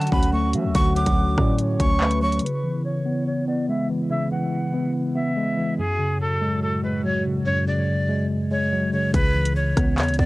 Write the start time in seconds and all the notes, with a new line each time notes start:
Already playing: D3 F#3 C#4 F#4 F#5
0.01 closed hi-hat
0.07 closed hi-hat
0.12 D2 C#4 B5, kick
0.23 closed hi-hat
0.33 A3 C#6
0.53 F#3 E5, closed hi-hat
0.64 D2
0.75 D2 D3 F#5 C#6, kick, closed hi-hat
0.96 F#3 D6, closed hi-hat
1.06 D2, kick, closed hi-hat
1.37 A2 C#4 D5, kick, cross-stick
1.59 C#5, closed hi-hat
1.79 D2 C#4 C#6, kick, closed hi-hat
2.01 A3 B4, clap
2.11 closed hi-hat
2.22 F#3 C#5 C#6
2.32 closed hi-hat
2.39 C#3 B3 E4 B4, closed hi-hat
2.46 closed hi-hat
2.64 E3
2.85 C#5
3.05 B3
3.27 C#5
3.47 B3 D5
3.69 G#3 E5
3.90 E3
4.10 C#3 E5
4.31 E3 F#5
4.74 B3
5.15 B3 E5
5.37 G#3
5.58 E3
5.78 F#2 A2 F#3 F#4 G#4
5.99 C#3
6.21 A4
6.41 G#3
6.62 A4
6.83 G#3 B4
7.04 F#3 C#5
7.26 C#3
7.46 F#2 C#5
7.67 C#3 D5
8.09 G#3
8.51 G#3 C#5
8.72 F#3
8.93 C#3 C#5
9.14 C#2 C#3 B4, kick, closed hi-hat
9.35 E3
9.45 closed hi-hat
9.56 C#5
9.77 C#2 B3, kick, cross-stick, closed hi-hat
9.98 E2 C#5, clap, closed hi-hat
10.03 closed hi-hat
10.08 C#2, closed hi-hat
10.14 closed hi-hat
10.19 E2 B3 D5, kick